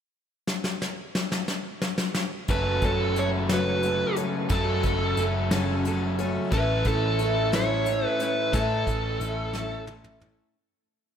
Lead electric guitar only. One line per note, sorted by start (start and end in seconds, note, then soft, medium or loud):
2.51 2.85 B4 medium
2.86 3.19 A4 medium
3.19 3.28 C#5 medium
3.53 4.15 B4 medium
4.52 5.23 A4 medium
6.53 6.84 B4 medium
6.88 7.50 A4 medium
7.56 8.07 C#5 medium
8.07 8.23 B4 medium
8.23 8.54 B4 medium
8.55 9.84 A4 medium